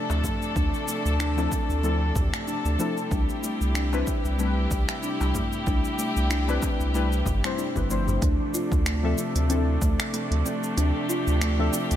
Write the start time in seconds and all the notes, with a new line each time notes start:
Already playing: C3 F3 A3 D4 A4
0.10 D2, darbuka tek, cabasa
0.24 A3, kick, darbuka dum, cabasa
0.42 cabasa
0.56 D2 D4, kick, cabasa
0.74 cabasa
0.88 A3, cabasa
1.05 D2, cabasa
1.20 D4, finger snap, cabasa
1.37 F3 C4 D4 E4 A4, darbuka ka, cabasa
1.52 C4, kick, cabasa
1.69 D2, cabasa
1.83 F3 A3 C4 D4 E4 A4, cabasa
2.15 D2 G4, kick, darbuka dum, cabasa
2.34 finger snap, cabasa
2.47 D4, cabasa
2.65 D2, cabasa
2.78 F3 A3 C4 D4 E4 A4, cabasa
2.97 cabasa
3.11 C2 G3 D4 E4 G4, kick, cabasa
3.29 cabasa
3.44 A3, cabasa
3.61 C2, cabasa
3.75 D4, finger snap, cabasa
3.92 G3 C4 D4 E4 B4, darbuka ka, cabasa
4.07 C4, kick, cabasa
4.25 C2, cabasa
4.38 G3 A3 C4 D4 E4 B4, cabasa
4.71 C2 G4, kick, cabasa
4.89 finger snap, cabasa
5.03 D4, cabasa
5.21 C2, darbuka tek, cabasa
5.35 A3, kick, darbuka dum, cabasa
5.53 cabasa
5.67 C2 D4, kick, cabasa
5.85 cabasa
5.99 A3, cabasa
6.16 C2, cabasa
6.30 D4, finger snap, cabasa
6.47 G3 C4 D4 E4 B4, darbuka ka, cabasa
6.62 C4, kick, darbuka tek, cabasa
6.80 C2, cabasa
6.94 G3 A3 C4 D4 E4 B4, cabasa
7.12 cabasa
7.26 G1 G4, kick, darbuka dum, cabasa
7.43 G3 C4 D4 E4 C5, finger snap, cabasa
7.58 D4, cabasa
7.75 G1 G3 C4 D4 E4 B4, kick, darbuka dum, cabasa
7.89 F3 A3 C4 D4 E4 C5, cabasa
8.08 darbuka dum, cabasa
8.22 D2 C3 F3 A3 D4, kick, closed hi-hat, cabasa
8.54 F4, cabasa
8.72 D2, kick, cabasa
8.86 A3, finger snap, closed hi-hat, cabasa
9.03 F3 C4 D4 A4 E5
9.18 C4, cabasa
9.35 D2, closed hi-hat, cabasa
9.49 F3 C4 D4 E4 A4, closed hi-hat, cabasa
9.82 D2 A3, kick, cabasa
10.00 finger snap, closed hi-hat, cabasa
10.14 A3, closed hi-hat, cabasa
10.31 D2, closed hi-hat
10.46 C4, cabasa
10.63 cabasa
10.77 D2 D4 G4, closed hi-hat, cabasa
11.09 F4, cabasa
11.27 D2, cabasa
11.41 A3, finger snap, closed hi-hat, cabasa
11.58 F3 C4 D4 A4 E5
11.73 C4, cabasa
11.91 D2, closed hi-hat, cabasa